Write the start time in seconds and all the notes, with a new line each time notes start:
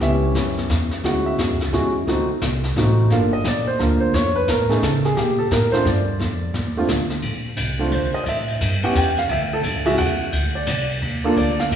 0.00 C#2 B3 C#4 E4 G4 E5, brush sweep, kick, snare
0.24 C#5
0.35 F#2, kick, snare, hi-hat pedal
0.57 snare
0.69 E2, kick, snare, hi-hat pedal
0.91 snare
1.03 D2 G#3 C#4 E4 F#4 F#5, brush sweep, kick, snare
1.26 E5
1.38 F#2, kick, snare, hi-hat pedal
1.50 D2
1.61 C#2, snare
1.73 E2 G#3 C#4 E4 F#4, kick, snare
2.07 D2 A3 C4 D#4 F#4, brush sweep, kick, snare
2.29 muted upright bass stroke
2.41 C2, kick, snare, hi-hat pedal
2.63 snare
2.76 A1 A3 C4 D#4 F#4, kick, snare
3.10 G1 A#3 D4 F4 A4 F5, brush sweep, kick, snare
3.33 D#5
3.44 A#1 D5, kick, snare, hi-hat pedal
3.67 C5
3.79 D2 A#3 D4 F4 A#4, kick, snare
4.00 C5
4.13 F2 C#5, brush sweep, kick, snare
4.36 B4
4.48 A2 A#4, kick, snare, hi-hat pedal
4.69 A3 C#4 D#4 G#4, snare
4.82 C#3 A4, kick, snare, hi-hat pedal
5.05 G#4, snare
5.17 A#2 G4, brush sweep, kick, snare
5.39 A4
5.51 A2 A#4, kick, snare, hi-hat pedal
5.72 A3 C4 D4 F4 C5, snare
5.85 G2 D5, kick, snare
6.20 F2, brush sweep, kick, snare
6.54 D#2, kick, snare
6.77 A3 C4 D4 F4
6.88 D2, kick, snare, hi-hat pedal
7.10 snare
7.22 A#1, kick, ride
7.57 C2, kick, hi-hat pedal, ride
7.79 A3 C4 D4 F4
7.92 D2 C5, kick, ride
8.14 D#5, muted upright bass stroke
8.24 A2 D#5, kick, ride
8.29 E5
8.48 ride
8.61 G2, kick, hi-hat pedal, ride
8.83 B3 C#4 E4 G4 F#5, muted upright bass stroke, ride
8.95 E2 G5, kick, hi-hat pedal, ride
9.17 F5, snare, ride
9.29 D2 E5, kick, ride
9.53 A4
9.63 F#2, kick, hi-hat pedal, ride
9.74 D2
9.85 C#2 G#3 C#4 E4 F#4 E5, ride
9.97 E2 F#5, kick, ride
10.32 D2, kick, ride
10.55 D5
10.67 C2 D5, kick, hi-hat pedal, ride
10.89 ride
11.02 D#2, kick, ride
11.24 A#3 D4 F4 A4
11.36 D2 D5, kick, ride
11.59 F5, snare
11.71 A2, kick, hi-hat pedal, ride